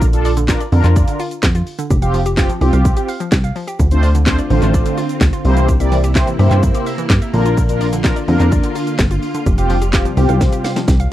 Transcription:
Already playing: A#1
0.01 D3, kick, shaker
0.13 D4 F4 A4, closed hi-hat, shaker
0.25 D5, open hi-hat, shaker
0.37 D3, closed hi-hat, shaker
0.48 D4 F4 A#4, kick, snare, clap, shaker
0.61 D5, closed hi-hat, shaker
0.72 F2 D3 D4 F4 A#4, open hi-hat, shaker
0.84 F2 F4, clap, closed hi-hat, shaker
0.96 D5, kick, shaker
1.08 D3, closed hi-hat, shaker
1.20 F4, open hi-hat, shaker
1.31 closed hi-hat, shaker
1.43 F2 D3, kick, snare, clap, shaker
1.55 F4, closed hi-hat, shaker
1.67 open hi-hat, shaker
1.79 D3, closed hi-hat, shaker
1.90 F1 F4 G4, kick, shaker
2.02 C4 F4 G4 F5, closed hi-hat, shaker
2.14 F3, open hi-hat, shaker
2.26 G4, closed hi-hat, shaker
2.37 C4 F4 G4 F5, kick, snare, clap, shaker
2.49 F3, closed hi-hat, shaker
2.61 C2 C4 F4 G4, open hi-hat, shaker
2.73 C2 F5, closed hi-hat, shaker
2.85 kick, shaker
2.97 G4, closed hi-hat, shaker
3.08 F5, open hi-hat, shaker
3.20 F3, closed hi-hat, shaker
3.32 C2 G4, kick, snare, clap, shaker
3.44 F5, closed hi-hat, shaker
3.56 F3, open hi-hat, shaker
3.68 G4, closed hi-hat, shaker
3.79 D2 D3 C4 F4 C5, kick, shaker
3.91 A3 C4 D4 F4 C5, closed hi-hat, shaker
4.03 D5, open hi-hat, shaker
4.15 D3, closed hi-hat, shaker
4.26 A3 C4 D4 F4 C5, kick, snare, clap, shaker
4.38 D5, closed hi-hat, shaker
4.50 A1 D3 A3 C4 D4 F4 C5, open hi-hat, shaker
4.62 A1 F4, clap, closed hi-hat, shaker
4.74 D5, kick, shaker
4.86 D3, closed hi-hat, shaker
4.97 F4, open hi-hat, shaker
5.09 closed hi-hat, shaker
5.21 D2 D3, kick, snare, clap, shaker
5.33 F4, closed hi-hat, shaker
5.44 C2 C3 A#3 C4 E4 G4 C5, open hi-hat, shaker
5.57 E3, closed hi-hat, shaker
5.68 G4, kick, shaker
5.80 A#3 C4 E4 G4 D5 E5, closed hi-hat, shaker
5.92 E3, open hi-hat, shaker
6.04 G4, closed hi-hat, shaker
6.15 A#3 C4 E4 G4 C5 E5, kick, snare, clap, shaker
6.27 E3, closed hi-hat, shaker
6.39 G2 A#3 C4 E4 G4 C5, open hi-hat, shaker
6.51 G2 E5, clap, closed hi-hat, shaker
6.63 kick, shaker
6.75 G4, closed hi-hat, shaker
6.86 E5, open hi-hat, shaker
6.98 E3, closed hi-hat, shaker
7.10 G2 G4, kick, snare, clap, shaker
7.22 E5, closed hi-hat, shaker
7.33 A#1 D3 D4 F4 A#4, open hi-hat, shaker
7.45 F4, closed hi-hat, shaker
7.57 D3, kick, shaker
7.69 D4 F4 A#4, closed hi-hat, shaker
7.81 D5, open hi-hat, shaker
7.93 D3, closed hi-hat, shaker
8.04 D4 F4 A#4, kick, snare, clap, shaker
8.16 D5, closed hi-hat, shaker
8.28 F2 D3 D4 F4 A#4, open hi-hat, shaker
8.40 F2 F4, clap, closed hi-hat, shaker
8.52 D5, kick, shaker
8.63 D3, closed hi-hat, shaker
8.75 F4, open hi-hat, shaker
8.87 closed hi-hat, shaker
8.99 G1 D3, kick, snare, clap, shaker
9.11 F4, closed hi-hat, shaker
9.23 open hi-hat, shaker
9.35 D3, closed hi-hat, shaker
9.46 F1 C3 G3 F4 G4, kick, shaker
9.58 C4 F4 G4 F5, closed hi-hat, shaker
9.70 F3, open hi-hat, shaker
9.82 G4, closed hi-hat, shaker
9.93 C4 F4 G4 F5, kick, snare, clap, shaker
10.05 F3, closed hi-hat, shaker
10.17 C2 C4 F4 G4, open hi-hat, shaker
10.29 C2 F5, closed hi-hat, shaker
10.41 kick, snare, shaker
10.53 G4, closed hi-hat, shaker
10.64 F5, snare, open hi-hat, shaker
10.76 F3, snare, closed hi-hat, shaker
10.88 C2 G4, kick, snare, shaker
11.00 F5, closed hi-hat, shaker

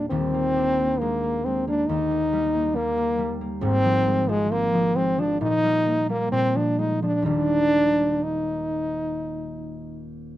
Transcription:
Already playing: D#2 A#2 G3 A#3 D#4
0.10 D#1 D#2 C4
0.34 A#3
0.56 D4
0.79 A#3
0.99 G#3 A#3
1.24 A#3
1.45 G#3 C4
1.67 A#3 D4
1.89 D#2 D#4
2.11 A#3
2.33 G3
2.54 A#3
2.75 G3 A#3
2.97 A#3
3.18 G3
3.41 A#3
3.61 G#1 G#2 C4
3.85 F3
4.07 G#3
4.29 F3 G#3
4.51 A#3 C4
4.74 F3
4.96 G#3 C4
5.18 F3 D4
5.41 A#2 D#4
5.63 G3
5.86 A#3
6.09 G3 A#3
6.32 A#2 C4
6.55 F3 D4
6.79 G#3 D#4
7.02 F3 D4
7.22 D#1 D#2 D#3 G3 A#3
7.26 D4
8.23 D#4

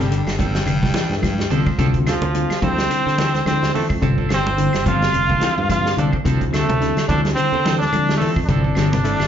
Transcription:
Already playing: G1 D3 G3 G4
0.11 D3, closed hi-hat
0.27 G1, snare, closed hi-hat, claves
0.39 F3 G3 C4 D4 A4, kick, closed hi-hat, high conga, low conga
0.55 snare, closed hi-hat
0.66 F1 D3, closed hi-hat, claves
0.83 kick, snare, high conga
0.94 E3 F3 D4, snare, closed hi-hat, high conga
1.10 G2, snare, high conga
1.18 A3
1.22 F3 G3, kick, snare, closed hi-hat, high conga, claves
1.38 snare, high conga
1.50 C2 D3 F3 C4 D4 A4, closed hi-hat, low conga
1.66 muted fingered electric bass stroke, kick, high conga, claves
1.78 D2 C3 D3 F3 G3 C4 D4 F4 A4, kick, closed hi-hat
1.94 kick, closed hi-hat
2.07 D3 F3 C4 D4 F4 A4, snare, closed hi-hat, claves
2.22 D2, muted clean electric guitar stroke, closed hi-hat, high conga
2.34 D3 G3 C4 F4, closed hi-hat
2.50 muted fingered electric bass stroke, snare, closed hi-hat, claves
2.62 D2 D3 F3 G3 C4 D4 E4 A4 C5, kick, closed hi-hat, high conga, low conga
2.78 snare, closed hi-hat
2.90 D3, closed hi-hat, claves
3.06 D3 C4 D4 A4, snare
3.18 E3 F3 D4 A4, snare, closed hi-hat, high conga
3.34 snare, closed hi-hat, high conga
3.46 D3 F3 G3 C4 E4 C5, snare, closed hi-hat, high conga, claves
3.63 snare, high conga
3.74 E3 F3 A3 C4 D4 A4, open hi-hat, low conga
3.90 F2, kick, high conga, claves
4.01 G1 C3 D3 G3 C4 D4 F4 A4, muted clean electric guitar stroke, kick, closed hi-hat
4.18 C4 D4 A4, kick
4.29 G1 D3 F3 C4 D4 A4, snare, closed hi-hat, claves
4.34 C4 C5
4.47 high conga
4.57 D3 G3 C4 E4, closed hi-hat
4.73 G1, snare, closed hi-hat, claves
4.86 D3 F3 G3 C4 D4 F4 A4 F5, kick, closed hi-hat, high conga, low conga
5.02 snare, closed hi-hat
5.12 F1, muted clean electric guitar stroke, closed hi-hat, claves
5.29 C4 D4 A4, kick, high conga, low conga
5.40 E3 F3 C4 D4 A4, snare, closed hi-hat, high conga
5.58 G2, high conga
5.68 D3 F3 G3 C4 F4 F5, kick, snare, closed hi-hat, high conga, claves
5.86 snare
5.97 C2 D3 F3 C4 D4 A4 D5, closed hi-hat, low conga
6.13 muted fingered electric bass stroke, kick, claves
6.23 D2 C3 D3 F3 G3 C4 D4 E4 A4, kick, closed hi-hat
6.41 kick, closed hi-hat
6.53 D3 F3 A3 C4 D4 A4, snare, closed hi-hat, claves
6.68 D2 C3, closed hi-hat, high conga
6.80 D3 G3 C4 E4, snare, closed hi-hat
6.97 muted fingered electric bass stroke, snare, closed hi-hat, claves
7.07 D2 D3 F3 G3 C4 D4 E4 A4 D5, kick, closed hi-hat, high conga, low conga
7.25 snare, closed hi-hat
7.35 D3 C4 C5, closed hi-hat, claves
7.52 D3 C4 D4 A4, low conga
7.65 E3 F3 C4 D4 A4, snare, closed hi-hat, high conga
7.78 D4 D5, snare, closed hi-hat, high conga
7.92 D3 F3 G3 C4 E4, closed hi-hat, high conga, claves
8.09 snare, high conga
8.17 E3 F3 A3 A4
8.21 C4 D4 A4, open hi-hat, low conga
8.36 F2, kick, claves
8.46 G1 C3 D3 F3 G3 C4 D4 E4 D5, kick, closed hi-hat
8.50 D4 A4
8.64 C4 D4 A4, kick
8.75 G1 D3 F3 C4 D4 A4, snare, closed hi-hat, claves
8.92 C3, snare, high conga
9.03 D3 G3 A3 C4 E4, closed hi-hat
9.20 G1, snare, closed hi-hat, claves

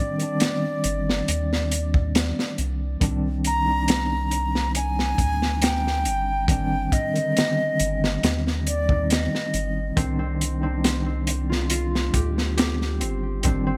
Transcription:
Already playing: D#3 G3 C4 D4 D5
0.18 D#3 G3 C4, closed hi-hat
0.23 D4
0.40 snare, closed hi-hat
0.84 G1, closed hi-hat
1.10 snare
1.28 D#2, closed hi-hat
1.53 snare
1.71 closed hi-hat
1.94 kick
2.15 snare, closed hi-hat
2.39 snare
2.58 C2, closed hi-hat
3.00 C2 D#3 G3 C4 D4, kick, closed hi-hat
3.44 A#5, closed hi-hat
3.66 G3 C4 D#4
3.70 D4
3.88 snare, closed hi-hat
4.31 closed hi-hat
4.55 snare
4.75 G#5, closed hi-hat
4.99 snare
5.18 D2, kick, closed hi-hat
5.42 snare
5.62 G5, snare, closed hi-hat
5.87 snare
6.05 G1, closed hi-hat
6.48 D#3 G3 C4 D4 G5, kick, closed hi-hat
6.92 D#5, kick, closed hi-hat
7.14 D#3 G3 C4, closed hi-hat
7.18 D3
7.37 snare, closed hi-hat
7.80 G1, closed hi-hat
8.04 snare
8.23 D#2, snare, closed hi-hat
8.47 snare
8.67 D5, closed hi-hat
8.89 D#3 G3 C4 D#4, kick
9.10 D#5, snare, closed hi-hat
9.35 snare
9.54 G1, closed hi-hat
9.96 C2 D#3 G3 C4 D4, kick, closed hi-hat
10.19 C4
10.41 closed hi-hat
10.62 G3 C4 D#4
10.66 D4
10.84 snare, closed hi-hat
11.06 C4
11.27 closed hi-hat
11.49 F4, snare
11.70 F4, closed hi-hat
11.95 snare
12.13 D2 G4, kick, closed hi-hat
12.38 snare
12.57 G4, snare, closed hi-hat
12.82 snare
13.00 G1 C4, closed hi-hat
13.43 D#3 G3 C4 D4, kick, closed hi-hat
13.67 C4

